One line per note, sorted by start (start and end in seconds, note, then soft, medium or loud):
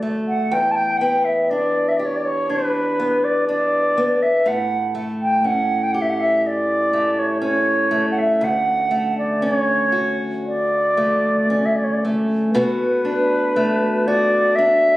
0.00 0.51 D2 medium
0.00 0.62 A3 soft
0.00 0.62 F#4 soft
0.28 0.53 F#5 medium
0.51 4.45 E2 medium
0.51 0.73 G5 medium
0.71 0.77 A5 soft
0.76 0.99 G5 medium
0.97 2.98 B3 soft
0.97 1.02 F#5 soft
0.97 1.26 G5 medium
1.24 1.51 E5 medium
1.50 2.48 D4 soft
1.50 1.90 D5 medium
1.88 1.98 E5 medium
1.97 4.98 G4 soft
1.97 2.07 D5 medium
2.05 2.18 C#5 medium
2.16 2.26 D5 medium
2.25 2.52 C#5 medium
2.49 3.47 D4 soft
2.49 3.26 B4 medium
3.00 3.96 B3 soft
3.24 3.47 D5 medium
3.48 4.56 D4 soft
3.48 4.24 D5 medium
3.97 4.56 B3 soft
4.22 4.49 E5 medium
4.46 8.41 A2 medium
4.46 4.94 F#5 medium
4.95 6.93 A3 soft
5.22 5.47 G5 medium
5.44 7.41 C#4 soft
5.44 5.85 F#5 medium
5.83 5.94 G5 medium
5.92 8.51 G4 soft
5.92 6.03 F#5 medium
6.02 6.11 E5 medium
6.10 6.21 F#5 medium
6.20 6.37 E5 medium
6.37 6.48 E5 medium
6.46 7.20 D5 medium
6.93 7.91 A3 soft
7.19 7.42 C#5 medium
7.42 9.42 C#4 soft
7.42 8.06 C#5 medium
7.91 8.90 A3 soft
8.11 8.20 F#5 soft
8.18 8.45 E5 medium
8.41 12.55 D2 medium
8.41 9.17 F#5 medium
8.91 10.97 A3 soft
9.18 9.45 D5 medium
9.42 10.44 C#4 soft
9.42 10.17 C#5 medium
9.92 12.55 F#4 soft
10.46 11.67 D5 medium
10.97 12.04 A3 soft
11.50 12.65 C#4 soft
11.65 11.77 E5 soft
11.76 11.85 D5 soft
11.84 11.94 C#5 soft
11.93 12.03 D5 soft
12.05 13.56 A3 soft
12.53 14.97 B2 medium
12.53 14.06 F#4 medium
12.53 14.09 B4 medium
13.05 14.58 D4 soft
13.56 14.97 A3 soft
14.07 14.97 F#4 soft
14.07 14.57 D5 medium
14.55 14.97 D4 soft
14.55 14.97 E5 medium